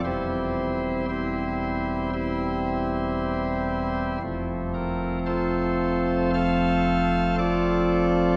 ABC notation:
X:1
M:4/4
L:1/8
Q:1/4=57
K:F
V:1 name="Pipe organ"
[EGc]2 [EGc]2 [EGc]4 | z B [FAc]2 [Acf]2 [FAd]2 |]
V:2 name="Pipe organ" clef=bass
[E,,,E,,G,C]8 | [F,,,F,,F,A,C]8 |]